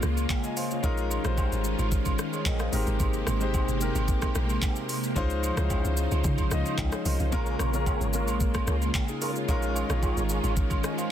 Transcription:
Already playing: string machine C#3 G#3 A#3 F4, grand piano G#3 A#3 C#4 F4 A#4
0.02 log drum bass C#2, cross-stick, shaker
0.17 high agogo, shaker
0.30 kick, clap, low woodblock, shaker
0.44 grand piano D#5 G#5, shaker
0.57 grand piano C5 F5, open hi-hat, high agogo, shaker
0.71 grand piano G#4 C#5, shaker
0.83 log drum bass A#1, string machine D#3 G#3 C#4 F4, grand piano G#3 C#4 D#4 F4 A#4, kick, high agogo, shaker
0.97 shaker
1.11 high agogo, shaker
1.24 log drum bass A#1, grand piano G3 C#4 D#4 F4 C5, cross-stick, shaker
1.30 grand piano G#3
1.38 kick, high agogo, low woodblock, shaker
1.52 log drum bass G#1, shaker
1.64 shaker
1.79 log drum bass G#1, high agogo, shaker
1.92 kick, shaker
2.05 kick, high agogo, shaker
2.19 cross-stick, shaker
2.33 grand piano G#4 C#5, high agogo, shaker
2.46 log drum bass A#1, grand piano A#4 D#5, kick, clap, low woodblock, shaker
2.59 grand piano C5 F5, cross-stick, shaker
2.72 log drum bass G#1, string machine C3 A#3 G4, grand piano G#3 C4 D#4 G4 A#4, open hi-hat, high agogo, shaker
2.87 log drum bass G#1, shaker
3.00 log drum bass G#1, kick, high agogo, shaker
3.13 shaker
3.27 log drum bass G#1, cross-stick, high agogo, shaker
3.40 grand piano G#3 C4 D#4 G4 C5, shaker
3.54 kick, high agogo, low woodblock, shaker
3.68 log drum bass G1, shaker
3.80 grand piano G#3 C4 D#4 G4 A#4, shaker
3.95 log drum bass G#1, high agogo, shaker
4.08 kick, shaker
4.22 kick, cross-stick, high agogo, shaker
4.35 log drum bass A#1, cross-stick, shaker
4.50 high agogo, shaker
4.62 kick, clap, low woodblock, shaker
4.76 shaker
4.89 open hi-hat, high agogo, shaker
5.03 shaker
5.15 log drum bass C#2, string machine C#3 F3 D#4 C5, grand piano G#3 C#4 D#4 F4 C5, kick, high agogo, shaker
5.30 shaker
5.43 high agogo, shaker
5.57 log drum bass C#2, grand piano G#3 C#4 D#4 E4 C5, cross-stick, shaker
5.64 grand piano F4
5.70 kick, high agogo, low woodblock, shaker
5.85 log drum bass C#2, shaker
5.97 shaker
6.11 log drum bass C#2, high agogo, shaker
6.24 log drum bass C#3, kick, shaker
6.38 kick, high agogo, shaker
6.51 log drum bass C#2, grand piano G#3 C#4 D#4 F4 D#5, cross-stick, shaker
6.66 high agogo, shaker
6.78 log drum bass C#2, kick, clap, low woodblock, shaker
6.92 grand piano G#4 C#5, cross-stick, shaker
7.05 log drum bass C2, grand piano A#4 D#5, open hi-hat, high agogo, shaker
7.20 log drum bass C2, grand piano C5 F5, shaker
7.32 log drum bass A#1, grand piano G#3 A#3 C#4 F4 A#4, string machine G#3 A#3 F4, tonewheel organ G#4 A#4 C#5, kick, high agogo, shaker
7.46 shaker
7.59 log drum bass A#1, cross-stick, high agogo, shaker
7.73 grand piano G#3 A#3 C#4 F4 A#4, shaker
7.86 kick, high agogo, low woodblock, shaker
8.01 log drum bass G#1, shaker
8.13 grand piano G#3 A#3 C#4 F4 A#4, tonewheel organ G#4 A#4 C#5, shaker
8.28 log drum bass A#1, high agogo, shaker
8.40 kick, shaker
8.54 kick, cross-stick, high agogo, shaker
8.67 log drum bass C#2, tonewheel organ G#4 A#4 C#5, cross-stick, shaker
8.82 high agogo, shaker
8.94 kick, clap, low woodblock, shaker
9.08 grand piano D#4 G#4, shaker
9.21 grand piano F4 A#4, tonewheel organ G#4 A#4 C#5, open hi-hat, high agogo, shaker
9.36 grand piano G#4 C#5, shaker
9.48 log drum bass A#1, string machine D#3 G#3 C#4, grand piano G#3 C#4 D#4 F4 A#4, tonewheel organ F4 G#4 C#5, kick, high agogo, shaker
9.62 shaker
9.76 high agogo, shaker
9.89 log drum bass A#1, grand piano G#3 C#4 D#4 F4 C#5, cross-stick, shaker
10.03 kick, high agogo, low woodblock, shaker
10.17 log drum bass G#1, shaker
10.29 tonewheel organ F4 G#4 C#5, shaker
10.44 log drum bass G#1, high agogo, shaker
10.57 kick, shaker
10.70 kick, high agogo, shaker
10.84 tonewheel organ F4 G#4 C#5, grand piano D#5 G#5, cross-stick, shaker
10.98 grand piano C5 F5, high agogo, shaker

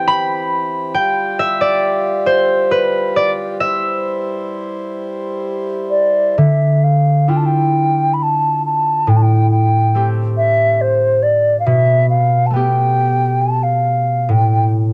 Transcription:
Already playing: harmonium E3 C4 G4, harp G5 A5
0.08 harp B5
0.94 harmonium G3 F4, harp G5
1.39 harp E5
1.61 harp D5
2.26 harp C5
2.71 harp B4
3.16 harp D5
3.60 harmonium E4 C5, harp E5
5.90 flute D5
6.38 harp D3, flute E5
6.84 flute F5
7.28 harp D4 E4 F4, flute G5
7.36 flute A5
7.45 flute G5
8.13 flute B5
8.22 flute A5
8.65 flute A5
9.07 harp A2, flute G5
9.16 flute A5
9.22 flute G5
9.50 flute G5
9.95 harp A3 C4 G4
10.37 flute E5
10.81 flute C5
11.22 flute D5
11.59 flute F5
11.66 harp B2, flute E5
12.09 flute F5
12.46 flute A5
12.51 harp A3 B3, flute G5
12.56 harp G4
13.41 flute A5
13.63 flute F5
14.29 harp A2, flute G5

